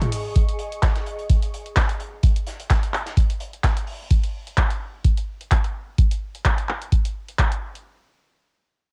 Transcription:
Already playing: ambient pad G#4 D#5 C#6
0.01 closed hi-hat, mid tom
0.12 open hi-hat
0.36 kick, closed hi-hat
0.49 closed hi-hat
0.59 closed hi-hat
0.72 closed hi-hat
0.83 kick, snare, clap, closed hi-hat
0.96 snare, closed hi-hat
1.06 closed hi-hat
1.19 closed hi-hat
1.29 kick, closed hi-hat
1.42 closed hi-hat
1.54 closed hi-hat
1.66 closed hi-hat
1.76 kick, snare, clap, closed hi-hat
1.89 closed hi-hat
2.00 closed hi-hat
2.23 kick, closed hi-hat
2.36 closed hi-hat
2.46 snare, closed hi-hat
2.60 closed hi-hat
2.70 kick, snare, clap, closed hi-hat
2.83 closed hi-hat
2.94 clap, closed hi-hat
3.06 snare, closed hi-hat
3.17 kick, closed hi-hat
3.30 closed hi-hat
3.40 closed hi-hat
3.53 closed hi-hat
3.64 kick, snare, clap, closed hi-hat
3.77 closed hi-hat
3.87 open hi-hat
4.11 kick, closed hi-hat
4.24 closed hi-hat
4.47 closed hi-hat
4.58 kick, clap, closed hi-hat
4.71 closed hi-hat
5.05 kick, closed hi-hat
5.17 closed hi-hat
5.41 closed hi-hat
5.51 kick, clap, closed hi-hat
5.64 closed hi-hat
5.98 kick, closed hi-hat
6.11 closed hi-hat
6.35 closed hi-hat
6.45 kick, clap, closed hi-hat
6.58 closed hi-hat
6.69 clap
6.81 closed hi-hat
6.92 kick, closed hi-hat
7.05 closed hi-hat
7.28 closed hi-hat
7.39 kick, clap, closed hi-hat
7.52 closed hi-hat
7.75 closed hi-hat

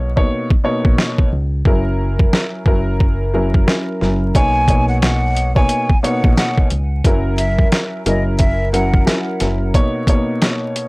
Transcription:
Already playing: fingered electric bass B1
0.16 upright piano B2 A#3 D#4 C#5, kick
0.50 kick
0.64 upright piano B2 A#3 D#4 C#5
0.85 fingered electric bass A#1, kick
0.98 snare
1.18 kick
1.33 fingered electric bass C#2
1.65 fingered electric bass F#1, upright piano F#3 C#4 E4 A#4, kick
2.19 kick
2.33 snare
2.66 fingered electric bass F#1, upright piano F#3 C#4 E4 A#4, kick
3.00 kick
3.34 upright piano F#3 C#4 E4 A#4
3.54 kick
3.66 upright piano F#3 C#4 E4 A#4, snare
4.01 fingered electric bass F#1, upright piano F#3 C#4 E4 A#4, snare
4.35 fingered electric bass B1, upright piano B2 A#3 D#4 C#5, flute G#5, kick, closed hi-hat
4.68 upright piano B2 A#3 D#4 C#5, kick, closed hi-hat
4.89 flute F#5
5.02 flute F#5, snare, closed hi-hat
5.37 closed hi-hat
5.55 upright piano B2 A#3 D#4 C#5, flute G#5, kick
5.69 closed hi-hat
5.89 kick
6.02 upright piano B2 A#3 D#4 C#5, flute F#5, closed hi-hat
6.24 fingered electric bass A#1, kick
6.36 flute F#5, snare, closed hi-hat
6.58 kick
6.70 fingered electric bass C#2, closed hi-hat
7.04 fingered electric bass F#1, upright piano F#3 C#4 E4 A#4, kick, closed hi-hat
7.37 flute E5, closed hi-hat
7.59 kick
7.72 snare, closed hi-hat
8.06 fingered electric bass F#1, upright piano F#3 C#4 E4 A#4, flute D#5, closed hi-hat
8.38 flute E5, kick, closed hi-hat
8.73 upright piano F#3 C#4 E4 A#4, flute F#5, closed hi-hat
8.94 kick
9.05 upright piano F#3 C#4 E4 A#4, snare, closed hi-hat
9.40 fingered electric bass F#1, upright piano F#3 C#4 E4 A#4, snare, closed hi-hat
9.74 upright piano B2 A#3 D#4 C#5, kick, closed hi-hat
10.07 upright piano B2 A#3 D#4 C#5, kick, closed hi-hat
10.42 snare, closed hi-hat
10.76 closed hi-hat

